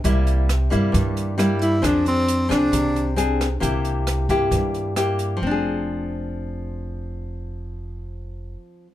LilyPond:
<<
  \new Staff \with { instrumentName = "Tenor saxophone" } { \time 4/4 \key f \dorian \tempo 4 = 134 r2. r8 e'8 | d'8 c'4 d'4. r4 | r1 | r1 |
r1 | }
  \new Staff \with { instrumentName = "Nylon-string guitar" } { \time 4/4 \key f \dorian << { <g bes e'>4 r8 <g bes e'>4. <g bes e'>4 | <c' d' aes'>4. <c' d' aes'>4. <c' d' aes'>8 r8 | <bes e' g'>4. <bes e' g'>4. <bes e' g'>4 | <f c' d' aes'>1~ |
<f c' d' aes'>1 | } \\ { c2 g,2 | f2 c2 | c2 g,2 | r1 |
r1 | } >> }
  \new Staff \with { instrumentName = "Upright bass" } { \clef bass \time 4/4 \key f \dorian c,4. g,8 g,2 | f,4. c,8 c,2 | c,4. g,8 g,2 | f,,1~ |
f,,1 | }
  \new DrumStaff \with { instrumentName = "Drums" } \drummode { \time 4/4 <hh bd>8 hh8 <hh ss>8 hh8 <hh bd>8 hh8 <hh ss>8 hh8 | <hh bd ss>8 hh8 hh8 <hh ss>8 <hh bd>8 hh8 hh8 <hh ss>8 | <hh bd>8 hh8 <hh ss>8 <hh bd>8 <hh bd>8 hh8 <hh ss>8 hh8 | r4 r4 r4 r4 |
r4 r4 r4 r4 | }
>>